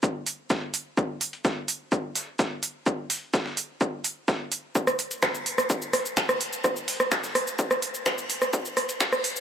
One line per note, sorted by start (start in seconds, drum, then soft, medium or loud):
0.03 kick loud
0.03 shaker medium
0.27 open hi-hat loud
0.27 shaker medium
0.50 kick loud
0.50 snare loud
0.50 shaker medium
0.74 open hi-hat loud
0.74 shaker medium
0.97 kick loud
0.97 shaker medium
1.21 open hi-hat loud
1.21 shaker medium
1.33 closed hi-hat soft
1.45 kick loud
1.45 snare loud
1.45 shaker medium
1.68 open hi-hat loud
1.68 shaker medium
1.92 kick loud
1.92 shaker medium
2.15 snare soft
2.15 open hi-hat loud
2.15 shaker medium
2.39 kick loud
2.39 snare loud
2.39 shaker medium
2.63 open hi-hat loud
2.63 shaker medium
2.86 kick loud
2.86 shaker medium
3.10 open hi-hat loud
3.10 open hi-hat medium
3.34 kick loud
3.34 snare loud
3.34 shaker medium
3.46 snare medium
3.57 open hi-hat loud
3.57 shaker medium
3.81 kick loud
3.81 shaker medium
4.04 open hi-hat loud
4.04 shaker medium
4.28 kick loud
4.28 snare loud
4.28 shaker medium
4.52 open hi-hat loud
4.52 shaker medium
4.75 kick loud
4.75 shaker medium
4.87 cross-stick medium
4.87 shaker soft
4.99 open hi-hat loud
4.99 shaker soft
4.99 shaker medium
5.11 closed hi-hat soft
5.11 shaker soft
5.23 finger snap loud
5.23 kick loud
5.23 cross-stick medium
5.23 snare loud
5.23 shaker medium
5.35 shaker soft
5.46 open hi-hat loud
5.46 shaker medium
5.58 cross-stick medium
5.58 shaker soft
5.70 kick loud
5.70 shaker medium
5.82 shaker soft
5.93 cross-stick medium
5.93 snare soft
5.93 open hi-hat loud
5.93 shaker soft
5.93 shaker medium
6.05 shaker soft
6.17 finger snap loud
6.17 kick loud
6.17 snare loud
6.17 shaker medium
6.29 cross-stick medium
6.29 shaker soft
6.41 open hi-hat loud
6.41 shaker soft
6.41 shaker medium
6.53 shaker soft
6.64 kick loud
6.64 cross-stick medium
6.64 shaker medium
6.76 shaker soft
6.88 open hi-hat medium
6.88 open hi-hat loud
6.88 shaker soft
7.00 cross-stick medium
7.00 shaker soft
7.12 finger snap loud
7.12 kick loud
7.12 snare loud
7.12 shaker medium
7.24 snare medium
7.24 shaker soft
7.35 cross-stick medium
7.35 open hi-hat loud
7.35 shaker medium
7.47 shaker soft
7.59 kick loud
7.59 shaker medium
7.71 cross-stick medium
7.71 shaker soft
7.82 open hi-hat loud
7.82 shaker soft
7.82 shaker medium
7.94 shaker soft
8.06 finger snap loud
8.06 kick loud
8.06 cross-stick medium
8.06 snare loud
8.06 shaker medium
8.18 shaker soft
8.30 open hi-hat loud
8.30 shaker medium
8.30 shaker soft
8.42 cross-stick medium
8.42 shaker soft
8.53 kick loud
8.53 shaker medium
8.65 shaker soft
8.77 cross-stick medium
8.77 open hi-hat loud
8.77 shaker soft
8.77 shaker medium
8.89 closed hi-hat soft
8.89 shaker soft
9.00 finger snap loud
9.00 kick loud
9.00 snare loud
9.00 shaker medium
9.13 cross-stick medium
9.13 shaker soft
9.24 open hi-hat loud
9.24 shaker medium
9.36 shaker soft